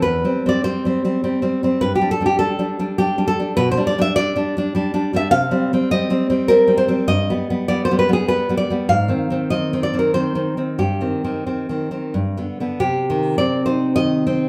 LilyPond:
\new Staff \with { instrumentName = "Nylon-string guitar" } { \time 3/4 \key g \mixolydian \tempo 4 = 101 << { b'8. d''16 c''4. r8 | b'16 g'16 a'16 g'16 a'4 g'8 a'8 | b'16 c''16 d''16 e''16 d''4.~ d''16 e''16 | \key c \minor f''4 ees''4 bes'8 c''8 |
ees''4 d''16 c''16 b'16 aes'16 b'8 d''8 | f''4 ees''8 d''16 bes'16 c''4 | g'2~ g'8 r8 | g'4 d''8 c''8 ees''4 | } \\ { \tuplet 3/2 { e,8 <g c'>8 <g c'>8 <g c'>8 <g c'>8 <g c'>8 <g c'>8 <g c'>8 <g c'>8 } | \tuplet 3/2 { g,8 <g d'>8 <g d'>8 <g d'>8 <g d'>8 <g d'>8 <g d'>8 <g d'>8 <g d'>8 } | \tuplet 3/2 { b,8 <g d'>8 <g d'>8 <g d'>8 <g d'>8 <g d'>8 <g d'>8 <g d'>8 <g d'>8 } | \tuplet 3/2 { c8 <g c'>8 <g c'>8 <g c'>8 <g c'>8 <g c'>8 <g c'>8 <g c'>8 <g c'>8 } |
\tuplet 3/2 { g,8 <g b>8 <g b>8 <g b>8 <g b>8 <g b>8 <g b>8 <g b>8 <g b>8 } | \tuplet 3/2 { aes,8 <ees c'>8 <ees c'>8 <ees c'>8 <ees c'>8 <ees c'>8 <ees c'>8 <ees c'>8 <ees c'>8 } | \tuplet 3/2 { g,8 <ees c'>8 <ees c'>8 <ees c'>8 <ees c'>8 <ees c'>8 g,8 <d b>8 <d b>8 } | c8 ees8 c'8 ees'8 ees8 c'8 | } >> }